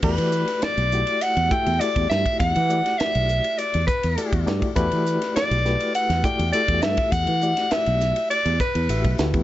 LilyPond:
<<
  \new Staff \with { instrumentName = "Soprano saxophone" } { \time 4/4 \key e \minor \tempo 4 = 102 b'4 d''4 fis''8 g''8 d''8 e''8 | fis''4 e''4 d''8 b'4 r8 | b'4 d''4 fis''8 g''8 d''8 e''8 | fis''4 e''4 d''8 b'4 r8 | }
  \new Staff \with { instrumentName = "Reed electric piano" } { \time 4/4 \key e \minor <a e' fis' g' d''>4. <a e' fis' g' d''>4 <a e' fis' g' e''>8 <a e' fis' g' d''>4~ | <a e' fis' g' d''>8 <a e' fis' g' d''>2 r8 <a e' fis' g' d''>8 <a e' fis' g' d''>8 | <a e' fis' g' d''>4. <a e' fis' g' b'>4 <a e' fis' g' d''>8 <a e' fis' g' a'>4~ | <a e' fis' g' a'>8 <a e' fis' g' d''>2 r8 <a e' fis' g' e''>8 <a e' fis' g' b'>8 | }
  \new Staff \with { instrumentName = "Fretless electric bass" } { \clef bass \time 4/4 \key e \minor e,16 e8 r8 b,,8 r8 e,16 r16 e,16 r16 e,16 g,16 r16 | e,16 e8 r8 b,,8 r8 e,16 r16 e,16 r16 e,16 g,16 r16 | e,16 e8 r8 b,,8 r8 e,16 r16 e,16 r16 e,16 g,16 r16 | e,16 e8 r8 b,,8 r8 e,16 r16 e,16 a,,16 b,,16 d,16 e,16 | }
  \new DrumStaff \with { instrumentName = "Drums" } \drummode { \time 4/4 <cymc bd>16 cymr16 hhp16 <cymr sn>16 <hhp cymr sn>16 cymr16 hhp16 cymr16 <hhp cymr>16 cymr16 <hhp bd>16 cymr16 <hhp cymr>16 <bd cymr>16 <hhp sn>16 <bd cymr>16 | <hhp bd cymr>16 cymr16 hhp16 <cymr sn>16 <hhp cymr sn>16 cymr16 hhp16 cymr16 <hhp cymr>16 cymr16 <hhp bd>16 cymr16 <hhp cymr>16 <bd cymr>16 <hhp sn>16 <bd cymr>16 | <hhp bd cymr>16 cymr16 hhp16 <cymr sn>16 <hhp cymr sn>16 cymr16 <hhp sn>16 cymr16 <hhp cymr>16 <cymr sn>16 <hhp bd>16 cymr16 <hhp cymr>16 <bd cymr>16 <hhp sn>16 <bd cymr>16 | <hhp bd cymr>16 cymr16 hhp16 <cymr sn>16 <hhp cymr sn>16 cymr16 <hhp sn>16 cymr16 <hhp cymr>16 cymr16 <hhp bd>16 cymr16 <hhp cymr>16 <bd cymr>16 <hhp sn>16 <bd cymr>16 | }
>>